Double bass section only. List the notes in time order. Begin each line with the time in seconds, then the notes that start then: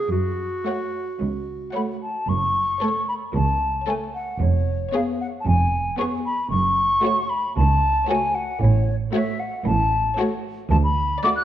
2.29 F#1
3.35 C#2
4.41 F1
5.47 F1
6.51 F#1
7.57 C#2
8.62 A1
9.66 A1
10.71 D2